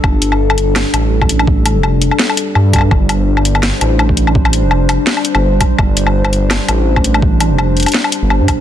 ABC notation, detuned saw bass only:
X:1
M:4/4
L:1/16
Q:"Swing 16ths" 1/4=167
K:Cdor
V:1 name="Detuned saw bass" clef=bass
G,,,8- G,,, z A,,,6- | A,,,3 F,,,4 z4 z G,,4 | G,,,8- G,,, z A,,,6- | A,,,3 F,,,4 z4 G,,,3 z2 |
G,,,8- G,,, z A,,,6- | A,,,3 F,,,4 z4 G,,,2 G,, B,,,2 |]